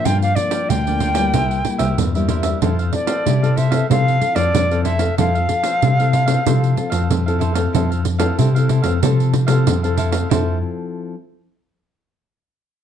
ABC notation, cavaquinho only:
X:1
M:4/4
L:1/16
Q:1/4=94
K:F
V:1 name="Cavaquinho"
[FBdg] [Bdg] z [Bdg] [FBdg] [Bdg] [FBdg] [Bdg] [EBce]2 z [Bce]2 [Bce] [EBce] [Bce] | [EAcf] [Acf] z [Acf] [EAcf] [Acf] [EAcf] [Acf] [Acf]2 z [Acf]2 [Acf] [EAcf] [Acf] | [EAcf] [Acf] z [Acf] [EAcf] [Acf] [EAcf] [Acf] [Acf]2 z [Acf]2 [Acf] [EAcf] [Acf] | [EAcf] [Acf] z [Acf] [EAcf] [Acf] [EAcf] [Acf] [Acf]2 z [Acf]2 [Acf] [EAcf] [Acf] |
[EAcf]2 z12 z2 |]